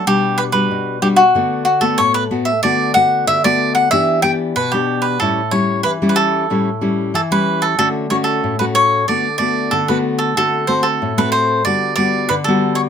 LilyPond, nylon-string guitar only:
\new Staff \with { instrumentName = "Nylon-string guitar" } { \time 4/4 \key d \major \tempo 4 = 93 << { <g d'>8. <g d' fis'>8. <g d' fis'>16 r16 <a b fis'>8 r16 <a b fis'>8. <a b fis'>16 r16 | <a b fis'>8 <a b fis'>8. <a b fis'>8. <b d' g'>8 <b d' g'>8 r16 <b d' g'>8. | <g cis' e'>16 r16 <g cis' e'>8. <g cis' e'>8. <g cis' e'>16 r16 <g cis' e'>8 r16 <g cis' e'>8. | <a cis' fis'>8 <a cis' fis'>8. <a cis' fis'>8. <a b fis'>16 r16 <a b fis'>8. <a b fis'>8. |
<a c' fis'>8 <a c' fis'>8. <a c' fis'>8. <g b fis'>8 <g b fis'>8 r16 <g b fis'>8. | } \\ { b,4 b,4 d4 a,4 | d4 d4 e4 b,4 | a,4 e4 a,4 e4 | d4 a,4 d4 d4 |
d4 a,4 d4 d4 | } >> }